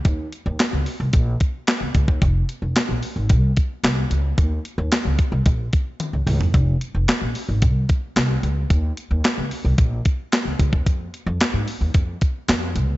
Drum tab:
HH |x-x-x-o-x-x-x-x-|x-x-x-o-x-x-x-x-|x-x-x-x-x-x-x-o-|x-x-x-o-x-x-x-x-|
CP |----x-------x---|----x-------x---|----x-----------|----x-------x---|
SD |----o-------o---|----o-------o---|----o-----------|----o-------o---|
T1 |----------------|----------------|------------o---|----------------|
T2 |----------------|----------------|--------------o-|----------------|
FT |----------------|----------------|---------------o|----------------|
BD |o-------o-o---oo|o-------o-o-----|o-----o-o-o-----|o-------o-o-----|

HH |x-x-x-o-x-x-x-x-|x-x-x-o-x-x-x-x-|
CP |----x-------x---|----x-------x---|
SD |----o-------o---|----o-------o---|
T1 |----------------|----------------|
T2 |----------------|----------------|
FT |----------------|----------------|
BD |o-------o-o---oo|o-------o-o-----|